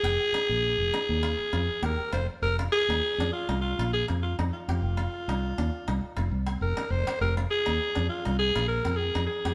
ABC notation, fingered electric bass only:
X:1
M:4/4
L:1/16
Q:"Swing 16ths" 1/4=101
K:Fdor
V:1 name="Fingered electric bass" clef=bass
F,,, z2 B,,,2 F,,, z E,,2 z F,, z E,, z F,,, z | F,,,2 z E,, z F,, z C,,2 B,,,2 F,,2 F,, z F,, | F,,,2 z C,,2 E,, z C,, z F,,, C,,2 F,,, z F,,, z | F,,,2 z E,, z F,, z C,,2 B,,,2 F,,2 F,, z F,, |]